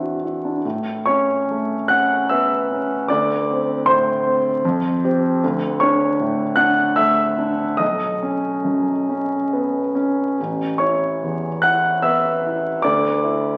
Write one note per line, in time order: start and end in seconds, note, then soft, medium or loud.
0.00 0.60 E2 soft
0.00 0.67 C4 soft
0.00 0.45 D4 soft
0.00 0.24 E4 soft
0.00 0.23 F#4 soft
0.00 0.23 E5 soft
0.00 0.66 F#5 medium
0.24 0.56 E4 soft
0.45 0.65 D4 soft
0.65 3.05 A2 soft
1.06 1.74 C#4 soft
1.06 1.85 C#5 medium
1.06 1.89 C#6 medium
1.51 2.14 A3 soft
1.88 2.53 C#4 soft
1.88 2.27 F#5 medium
1.88 2.29 F#6 medium
2.29 2.93 B3 soft
2.29 3.05 E5 soft
2.29 3.09 E6 medium
2.71 3.10 C#4 soft
3.08 4.61 D2 medium
3.08 3.83 D5 medium
3.08 3.87 D6 medium
3.51 4.11 C4 soft
3.86 4.49 A2 soft
3.86 4.99 C5 medium
3.86 5.03 C6 medium
4.25 4.64 C4 soft
4.65 5.41 F2 medium
5.05 5.39 C4 soft
5.05 5.39 G4 soft
5.44 7.77 D2 medium
5.80 6.43 D4 soft
5.80 6.54 C#5 medium
5.80 6.57 C#6 medium
6.20 6.82 A2 soft
6.56 7.22 D4 soft
6.56 6.94 F#5 medium
6.56 6.97 F#6 medium
6.96 7.64 A3 soft
6.96 7.76 E5 medium
6.96 7.80 E6 medium
7.38 7.80 D4 soft
7.77 10.34 B1 soft
7.77 9.91 D#5 medium
7.77 9.94 D#6 medium
8.23 8.91 C#4 soft
8.64 9.35 F#2 soft
9.10 9.79 C#4 soft
9.53 10.22 B3 soft
9.95 10.38 C#4 soft
10.40 12.81 A1 soft
10.78 11.46 E4 soft
10.78 11.58 C#5 medium
10.78 11.62 C#6 medium
11.23 11.88 E2 soft
11.62 12.29 E4 soft
11.62 12.01 F#5 medium
11.62 12.03 F#6 medium
12.02 12.68 B3 soft
12.02 12.79 E5 medium
12.02 12.83 E6 medium
12.46 12.85 E4 soft
12.82 13.57 D2 soft
12.82 13.57 D5 medium
12.82 13.57 D6 medium
13.24 13.57 E4 soft